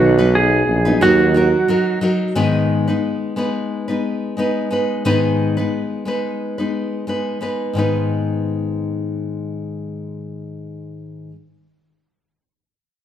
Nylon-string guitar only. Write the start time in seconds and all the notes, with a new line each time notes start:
Already playing: B2 D#3 F#3 B3 D#4 B4
0.18 F#3 B3 D#4 B4
0.85 F#3 B3 D#4 B4
1.01 D#3 F#3 D#4 F#4 A#4
1.34 F#3 D#4 F#4 A#4
1.68 F#3 D#4 F#4 A#4
2.01 F#3 D#4 F#4 A#4
2.35 G#2 D#3 G#3 B3 D#4 B4
2.88 G#3 B3 D#4 B4
3.36 G#3 B3 D#4 B4
3.88 G#3 B3 D#4 B4
4.37 G#3 B3 D#4 B4
4.71 G#3 B3 D#4 B4
5.05 G#2 D#3 G#3 B3 D#4 B4
5.57 G#3 B3 D#4 B4
6.05 G#3 B3 D#4 B4
6.58 G#3 B3 D#4 B4
7.07 G#3 B3 D#4 B4
7.41 G#3 B3 D#4 B4
7.73 G#2 D#3 G#3 B3
7.78 D#4 B4